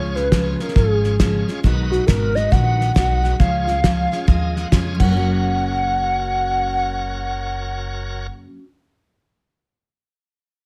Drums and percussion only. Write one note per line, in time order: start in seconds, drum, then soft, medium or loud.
0.16 snare soft
0.32 kick medium
0.32 snare loud
0.32 hi-hat pedal medium
0.60 snare soft
0.68 snare soft
0.76 kick loud
0.76 snare soft
1.04 snare soft
1.20 kick medium
1.20 snare loud
1.20 hi-hat pedal medium
1.48 snare soft
1.64 kick medium
1.64 snare soft
1.92 snare soft
2.08 kick medium
2.08 snare loud
2.08 hi-hat pedal medium
2.36 snare soft
2.52 kick loud
2.52 snare soft
2.81 snare soft
2.96 kick medium
2.96 snare loud
2.96 hi-hat pedal medium
3.24 snare soft
3.40 kick medium
3.40 snare soft
3.68 snare soft
3.84 kick medium
3.84 snare loud
3.84 hi-hat pedal medium
4.12 snare soft
4.28 kick loud
4.28 snare soft
4.56 snare soft
4.72 kick medium
4.72 snare loud
4.72 hi-hat pedal medium
5.00 kick medium
5.00 crash medium